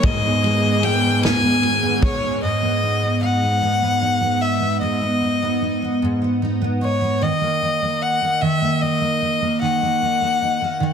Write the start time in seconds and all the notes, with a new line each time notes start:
Already playing: D#3 G3 A#3 D#4
0.03 G#2 B3 G#4 D#5, kick, ride
0.23 B3
0.43 G#3, ride
0.63 B3
0.83 G#3 G5, ride
1.03 B3
1.23 G#2 G#5, snare, ride
1.43 B3
1.62 G#3, ride
1.82 B3
2.02 G#3 C#5, kick, ride
2.22 B3
2.43 G#2 D#5
2.62 B3
2.83 D#4
3.02 B3
3.22 D#4 F#5
3.42 B3
3.62 G#2
3.82 B3
4.02 D#4
4.21 B3
4.42 E5
4.60 B3
4.81 G#2 D#5
5.01 B3
5.21 D#4
5.43 B3
5.62 D#4
5.82 B3
6.02 G#2
6.22 B3
6.42 D#4
6.61 B3
6.81 D#4 C#5
7.01 B3
7.21 D#3 D#5
7.41 A#3
7.62 D#4
7.82 A#3
8.02 F#5
8.21 A#3
8.41 D#3 E5
8.61 A#3
8.82 D#4 D#5
9.01 A#3
9.22 D#4
9.42 A#3
9.62 D#3 F#5
9.82 A#3
10.02 D#4
10.21 A#3
10.41 D#4
10.61 A#3
10.80 D#3